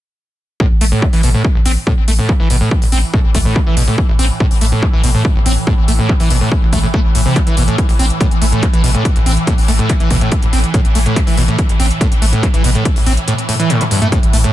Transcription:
0.60 synth drone A2 E3, acid bass A2, kick
0.71 sub bass A1
0.81 sub bass A1, acid bass A3, open hi-hat
0.92 acid bass A2
1.02 acid bass A3, kick
1.13 sub bass A1, acid bass E3, open hi-hat
1.23 sub bass A1, acid bass B2, open hi-hat
1.34 acid bass A2
1.45 kick
1.55 sub bass A1, acid bass A1
1.65 sub bass A1, acid bass C4, open hi-hat
1.87 acid bass A2, kick
1.98 sub bass A1
2.08 sub bass A1, acid bass A3, open hi-hat
2.19 acid bass A2
2.29 acid bass A3, kick
2.40 sub bass A1, acid bass E3
2.50 sub bass A1, acid bass B2, open hi-hat
2.61 acid bass A2
2.71 kick
2.82 acid bass A1, sub bass A1, open hi-hat
2.92 sub bass A1, acid bass C4, open hi-hat
3.13 acid bass A2, kick
3.24 sub bass A1
3.35 sub bass A1, acid bass A3, kick, open hi-hat
3.45 acid bass A2
3.56 acid bass A3, kick
3.67 sub bass A1, acid bass E3
3.77 sub bass A1, acid bass B2, open hi-hat
3.88 acid bass A2
3.98 kick
4.09 acid bass A1, sub bass A1
4.19 sub bass A1, acid bass C4, open hi-hat
4.40 acid bass A2, kick
4.51 sub bass A1, open hi-hat
4.61 sub bass A1, acid bass A3, open hi-hat
4.72 acid bass A2
4.83 acid bass A3, kick
4.93 sub bass A1, acid bass E3
5.04 sub bass A1, acid bass B2, open hi-hat
5.14 acid bass A2
5.25 kick
5.36 sub bass A1, acid bass A1
5.46 sub bass A1, acid bass C4, open hi-hat
5.67 acid bass A2, kick
5.78 sub bass A1
5.88 sub bass A1, acid bass A3, open hi-hat
5.99 acid bass A2
6.09 acid bass A3, kick
6.20 sub bass A1, acid bass E3, open hi-hat
6.30 sub bass A1, acid bass B2, open hi-hat
6.41 acid bass A2
6.52 kick
6.62 acid bass A1, sub bass A1
6.73 sub bass A1, acid bass A3, kick, open hi-hat
6.83 acid bass A2
6.94 acid bass A3, kick
7.05 sub bass A1
7.15 sub bass A1, acid bass A2, open hi-hat
7.26 acid bass C3
7.36 acid bass A3, kick, closed hi-hat
7.47 sub bass A1, acid bass E3, closed hi-hat
7.57 sub bass A1, acid bass B2, open hi-hat
7.68 acid bass A2, closed hi-hat
7.78 kick, closed hi-hat
7.89 acid bass A1, sub bass A1, open hi-hat
7.99 sub bass A1, acid bass C4, open hi-hat
8.10 closed hi-hat
8.20 acid bass A2, kick, closed hi-hat
8.31 sub bass A1, closed hi-hat
8.42 sub bass A1, acid bass A3, open hi-hat
8.52 acid bass A2, closed hi-hat
8.63 acid bass A3, kick, closed hi-hat
8.73 sub bass A1, acid bass E3, closed hi-hat
8.84 sub bass A1, acid bass B2, open hi-hat
8.95 acid bass A2, closed hi-hat
9.05 kick, closed hi-hat
9.16 sub bass A1, acid bass A1, closed hi-hat
9.26 sub bass A1, acid bass C4, open hi-hat
9.37 closed hi-hat
9.47 acid bass A2, kick, closed hi-hat
9.58 sub bass A1, open hi-hat
9.68 sub bass A1, acid bass A3, open hi-hat
9.79 acid bass A2, closed hi-hat
9.89 acid bass A3, kick, closed hi-hat
10.00 sub bass A1, acid bass E3, closed hi-hat
10.10 sub bass A1, acid bass B2, kick, open hi-hat
10.21 acid bass A2, closed hi-hat
10.32 kick, closed hi-hat
10.42 sub bass A1, acid bass A1, closed hi-hat
10.53 sub bass A1, acid bass C4, open hi-hat
10.64 closed hi-hat
10.74 acid bass A2, kick, closed hi-hat
10.85 sub bass A1, closed hi-hat
10.95 sub bass A1, acid bass A3, open hi-hat
11.06 acid bass A2, closed hi-hat
11.16 acid bass A3, kick, closed hi-hat
11.27 sub bass A1, acid bass E3, open hi-hat
11.37 sub bass A1, acid bass B2, open hi-hat
11.48 acid bass A2, closed hi-hat
11.58 kick, closed hi-hat
11.69 acid bass A1, sub bass A1, closed hi-hat
11.80 sub bass A1, acid bass C4, open hi-hat
11.91 closed hi-hat
12.01 acid bass A2, kick, closed hi-hat
12.12 sub bass A1, closed hi-hat
12.22 sub bass A1, acid bass A3, open hi-hat
12.33 acid bass A2, closed hi-hat
12.43 acid bass A3, kick, closed hi-hat
12.54 sub bass A1, acid bass E3, closed hi-hat
12.64 sub bass A1, acid bass B2, open hi-hat
12.75 acid bass A2, closed hi-hat
12.85 kick, closed hi-hat
12.96 acid bass A1, sub bass A1, open hi-hat
13.06 sub bass A1, acid bass C4, open hi-hat
13.17 closed hi-hat
13.28 acid bass A2, closed hi-hat
13.38 closed hi-hat
13.49 acid bass A2, open hi-hat
13.59 acid bass E3, closed hi-hat
13.70 acid bass A2, closed hi-hat, high tom
13.81 acid bass A3, closed hi-hat, high tom
13.91 acid bass G2, open hi-hat
14.02 acid bass A3, closed hi-hat, mid tom
14.12 acid bass A2, kick, closed hi-hat
14.23 sub bass A1, closed hi-hat
14.33 sub bass A1, acid bass A3, open hi-hat
14.44 acid bass A2, closed hi-hat, mid tom

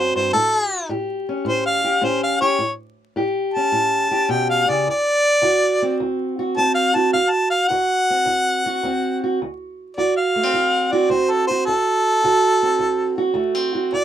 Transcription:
Already playing: steel-string acoustic guitar F#2 C4 F#4
0.00 harmonica C5
0.15 steel-string acoustic guitar G2, harmonica C5
0.33 steel-string acoustic guitar A2, harmonica A4
0.89 steel-string acoustic guitar A2 G4
1.29 steel-string acoustic guitar C#4
1.45 steel-string acoustic guitar A2, harmonica C5
1.66 harmonica F5
1.84 steel-string acoustic guitar G4
2.01 steel-string acoustic guitar A2 C#4, harmonica C5
2.23 harmonica F5
2.40 steel-string acoustic guitar G4, harmonica C#5
2.59 steel-string acoustic guitar A2
3.16 steel-string acoustic guitar A2 G4
3.54 steel-string acoustic guitar C#4, harmonica A5
3.72 steel-string acoustic guitar A2
4.11 steel-string acoustic guitar G4
4.29 steel-string acoustic guitar B2, harmonica G5
4.50 harmonica F5
4.69 steel-string acoustic guitar C#3, harmonica D5
4.87 steel-string acoustic guitar D2, harmonica D5
5.42 steel-string acoustic guitar D2 F#4
5.82 steel-string acoustic guitar C4
6.00 steel-string acoustic guitar D2
6.39 steel-string acoustic guitar F#4
6.57 steel-string acoustic guitar D2 C4, harmonica A5
6.75 harmonica F5
6.95 steel-string acoustic guitar F#4, harmonica A5
7.13 steel-string acoustic guitar D2, harmonica F5
7.30 harmonica A5
7.50 harmonica F5
7.68 steel-string acoustic guitar D2 F#4, harmonica F#5
8.10 steel-string acoustic guitar C4
8.26 steel-string acoustic guitar D2
8.66 steel-string acoustic guitar F#4
8.83 steel-string acoustic guitar D2 C4
9.24 steel-string acoustic guitar F#4
9.42 steel-string acoustic guitar D2
9.97 steel-string acoustic guitar D2 F#4, harmonica D5
10.17 harmonica F5
10.36 steel-string acoustic guitar A3
10.43 steel-string acoustic guitar C4
10.53 steel-string acoustic guitar D2
10.92 steel-string acoustic guitar F#4, harmonica D5
11.10 steel-string acoustic guitar D2 C4, harmonica C5
11.31 harmonica A4
11.47 steel-string acoustic guitar F#4, harmonica C5
11.66 steel-string acoustic guitar D2, harmonica A4
12.24 steel-string acoustic guitar D2 F#4
12.63 steel-string acoustic guitar C4
12.79 steel-string acoustic guitar D2
13.18 steel-string acoustic guitar F#4
13.34 steel-string acoustic guitar D2 A3
13.55 steel-string acoustic guitar C4
13.75 steel-string acoustic guitar F#4
13.93 steel-string acoustic guitar D2, harmonica D5

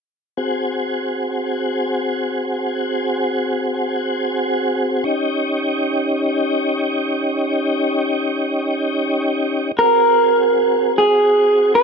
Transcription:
0.37 tonewheel organ C4 F#4 G#4
5.04 tonewheel organ C#4 D#4 G4
9.78 tonewheel organ C4 F#4 G#4, clean electric guitar A#4
10.98 clean electric guitar G#4
11.75 clean electric guitar C5

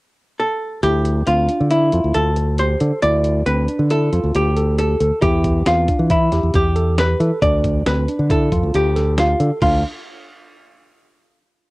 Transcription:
0.40 hollow-body jazz guitar A4
0.83 fingered electric bass D2, tine electric piano E4, hollow-body jazz guitar G4, closed hi-hat
1.05 closed hi-hat
1.27 fingered electric bass D2, tine electric piano C4, hollow-body jazz guitar F4, closed hi-hat
1.49 tine electric piano D4, closed hi-hat
1.61 fingered electric bass D3
1.71 hollow-body jazz guitar E4, tine electric piano E4, closed hi-hat
1.92 fingered electric bass F2, tine electric piano F4, closed hi-hat
2.04 fingered electric bass D2
2.14 fingered electric bass D2, hollow-body jazz guitar A4, closed hi-hat
2.36 tine electric piano A4, closed hi-hat
2.58 tine electric piano G4, hollow-body jazz guitar C5, closed hi-hat
2.80 fingered electric bass D3, tine electric piano A4, closed hi-hat
3.02 fingered electric bass D2, tine electric piano E4, hollow-body jazz guitar D5, closed hi-hat
3.24 closed hi-hat
3.46 fingered electric bass D2, tine electric piano C4, hollow-body jazz guitar B4, closed hi-hat
3.68 tine electric piano D4, closed hi-hat
3.79 fingered electric bass D3
3.90 tine electric piano E4, hollow-body jazz guitar A4, closed hi-hat
4.13 fingered electric bass F2, tine electric piano F4, closed hi-hat
4.24 fingered electric bass D2
4.35 fingered electric bass D2, hollow-body jazz guitar G4, closed hi-hat
4.57 tine electric piano A4, closed hi-hat
4.78 tine electric piano G4, hollow-body jazz guitar A4, closed hi-hat
5.00 fingered electric bass D2, tine electric piano A4, closed hi-hat
5.22 fingered electric bass E2, tine electric piano E4, hollow-body jazz guitar G4, kick, closed hi-hat
5.44 kick, closed hi-hat
5.66 fingered electric bass E2, tine electric piano C4, hollow-body jazz guitar F4, snare, closed hi-hat
5.88 tine electric piano D4, kick, closed hi-hat
5.99 fingered electric bass E3
6.10 tine electric piano E4, hollow-body jazz guitar E4, kick, closed hi-hat
6.32 fingered electric bass E2, tine electric piano G4, snare, closed hi-hat
6.43 fingered electric bass E2
6.54 fingered electric bass E2, hollow-body jazz guitar G4, kick, closed hi-hat
6.76 tine electric piano A4, closed hi-hat
6.98 tine electric piano G4, hollow-body jazz guitar B4, snare, closed hi-hat
7.20 fingered electric bass E3, tine electric piano A4, closed hi-hat
7.42 fingered electric bass D2, tine electric piano D4, hollow-body jazz guitar D5, kick, closed hi-hat
7.64 kick, closed hi-hat
7.86 fingered electric bass D2, tine electric piano C4, hollow-body jazz guitar B4, snare, closed hi-hat
8.08 tine electric piano D4, closed hi-hat
8.19 fingered electric bass D3
8.30 tine electric piano E4, hollow-body jazz guitar A4, kick, closed hi-hat
8.52 fingered electric bass F2, tine electric piano F4, kick, closed hi-hat
8.63 fingered electric bass D2
8.74 fingered electric bass D2, hollow-body jazz guitar G4, closed hi-hat
8.96 tine electric piano A4, snare, closed hi-hat
9.18 hollow-body jazz guitar F4, tine electric piano G4, snare, closed hi-hat
9.40 fingered electric bass D3, tine electric piano A4, closed hi-hat
9.62 fingered electric bass D2, tine electric piano D4, hollow-body jazz guitar F4, kick, crash

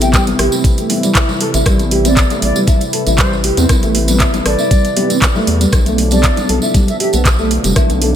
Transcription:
Already playing: analog synth bass A1, analog synth pad C3 E3 G3 A3 E4
0.01 nylon-string guitar E4, flute G5, closed hi-hat, tambourine, high conga
0.13 nylon-string guitar G3, flute G5, kick, clap, closed hi-hat, tambourine
0.27 closed hi-hat, tambourine, muted conga, high conga, low conga
0.39 analog synth bass A1, nylon-string guitar G4, cross-stick, open hi-hat
0.52 nylon-string guitar C4, tambourine
0.64 kick, closed hi-hat, tambourine, muted conga
0.78 nylon-string guitar A3, closed hi-hat, tambourine
0.89 open hi-hat, high conga, low conga
1.03 nylon-string guitar G3, closed hi-hat, tambourine, muted conga
1.15 nylon-string guitar E4, kick, clap, closed hi-hat, tambourine
1.29 tambourine, low conga
1.41 nylon-string guitar A4, open hi-hat
1.54 analog synth bass A1, nylon-string guitar E4, closed hi-hat, tambourine, muted conga
1.66 analog synth bass A1, nylon-string guitar G3, analog synth pad B4, kick, cross-stick, closed hi-hat, tambourine, low conga
1.79 closed hi-hat, tambourine, high conga
1.91 nylon-string guitar G4, open hi-hat, muted conga
2.05 nylon-string guitar C4, flute D5, closed hi-hat, tambourine, high conga
2.17 kick, clap, closed hi-hat, tambourine
2.30 nylon-string guitar A3, closed hi-hat, tambourine, muted conga, high conga, low conga
2.42 analog synth bass A1, flute D5, open hi-hat
2.56 nylon-string guitar G3, tambourine
2.67 nylon-string guitar E4, kick, closed hi-hat, tambourine, muted conga, low conga
2.81 closed hi-hat, tambourine
2.93 nylon-string guitar A4, open hi-hat
3.06 analog synth bass A1, nylon-string guitar E4, closed hi-hat, tambourine, muted conga
3.18 nylon-string guitar G3, flute C5, kick, clap, closed hi-hat, tambourine
3.33 tambourine
3.44 nylon-string guitar G4, open hi-hat
3.57 analog synth bass E2, nylon-string guitar C4, closed hi-hat, tambourine, muted conga, high conga
3.69 kick, cross-stick, closed hi-hat, tambourine, low conga
3.83 analog synth bass A1, nylon-string guitar A3, closed hi-hat, tambourine, high conga
3.95 open hi-hat, muted conga
4.08 nylon-string guitar G3, closed hi-hat, tambourine, high conga
4.20 nylon-string guitar E4, kick, clap, closed hi-hat, tambourine
4.34 closed hi-hat, tambourine, muted conga, high conga, low conga
4.45 analog synth bass A1, nylon-string guitar A4, flute D5, cross-stick, open hi-hat
4.59 nylon-string guitar E4, tambourine
4.71 nylon-string guitar G3, kick, closed hi-hat, tambourine, muted conga
4.85 closed hi-hat, tambourine
4.96 nylon-string guitar G4, open hi-hat, high conga, low conga
5.10 nylon-string guitar C4, closed hi-hat, tambourine, muted conga
5.22 kick, clap, closed hi-hat, tambourine
5.35 nylon-string guitar A3, tambourine, low conga
5.47 analog synth bass E2, open hi-hat
5.61 nylon-string guitar G3, closed hi-hat, tambourine, muted conga
5.72 analog synth bass B1, analog synth pad B2 D3 F3 D4, kick, cross-stick, closed hi-hat, tambourine, low conga
5.86 nylon-string guitar A3, closed hi-hat, tambourine, high conga
5.98 open hi-hat, muted conga
6.11 nylon-string guitar G3, flute D5, closed hi-hat, tambourine, high conga
6.24 nylon-string guitar E4, kick, clap, closed hi-hat
6.36 closed hi-hat, tambourine, muted conga, high conga, low conga
6.49 analog synth bass B1, nylon-string guitar A4, open hi-hat
6.62 nylon-string guitar E4, tambourine
6.74 nylon-string guitar G3, kick, closed hi-hat, tambourine, muted conga, low conga
6.88 flute E5, closed hi-hat, tambourine
7.00 nylon-string guitar G4, flute E5, open hi-hat
7.13 analog synth bass B1, nylon-string guitar B3, closed hi-hat, tambourine, muted conga
7.25 kick, clap, closed hi-hat, tambourine
7.39 nylon-string guitar A3, tambourine
7.51 open hi-hat
7.64 analog synth bass F1, nylon-string guitar G3, closed hi-hat, tambourine, muted conga, high conga
7.76 nylon-string guitar E4, kick, cross-stick, closed hi-hat, tambourine, low conga
7.89 analog synth bass B1, closed hi-hat, tambourine, high conga
8.01 nylon-string guitar A4, open hi-hat, muted conga

